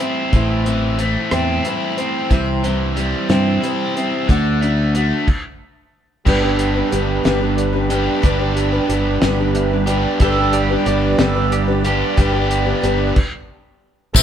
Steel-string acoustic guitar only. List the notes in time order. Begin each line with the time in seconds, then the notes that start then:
0.00 A3 C4 E4 C5
0.33 A2 E3 A3 C4 E4 C5
0.65 A3 C4 E4 C5
0.98 A3 C4 E4 C5
1.31 A2 E3 A3 C4 E4 C5
1.65 A3 C4 E4 C5
1.97 A3 C4 E4 C5
2.30 C3 E3 G3 C4 E4 C5
2.63 G3 C4 E4 C5
2.96 G3 C4 E4 C5
3.29 C3 E3 G3 C4 E4 C5
3.62 G3 C4 E4 C5
3.96 G3 C4 E4 C5
4.28 D3 A3 D4 F#4 D5
4.61 D4 F#4 D5
4.94 A3 D4 F#4 D5
6.26 G3 D4 G4 B4
6.42 D4 G4 B4
6.75 D4 G4 B4
6.91 G3 D4 G4 B4
7.24 G3 D4 G4 B4
7.41 D4 G4 B4
7.73 D4 G4 B4
7.89 G3 D4 G4 B4
8.22 G3 D4 G4 B4
8.39 D4 G4 B4
8.72 D4 G4 B4
8.89 G3 D4 G4 B4
9.21 G3 D4 G4 B4
9.38 D4 G4 B4
9.71 D4 G4 B4
9.88 G3 D4 G4 B4
10.21 G3 D4 G4 B4
10.37 D4 G4 B4
10.70 D4 G4 B4
10.86 G3 D4 G4 B4
11.18 G3 D4 G4 B4
11.35 D4 G4 B4
11.67 D4 G4 B4
11.84 G3 D4 G4 B4
12.17 G3 D4 G4 B4
12.33 D4 G4 B4
12.65 D4 G4 B4
12.82 G3 D4 G4 B4
14.14 A2 E3 A3 C4 E4 C5